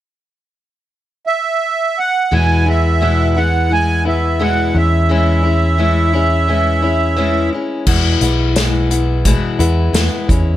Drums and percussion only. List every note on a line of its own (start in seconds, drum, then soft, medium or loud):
7.87 kick medium
7.87 crash medium
8.21 closed hi-hat medium
8.56 snare medium
8.56 closed hi-hat medium
8.91 closed hi-hat medium
9.25 kick medium
9.25 closed hi-hat medium
9.60 closed hi-hat medium
9.94 snare loud
9.94 closed hi-hat medium
10.29 kick medium
10.29 closed hi-hat soft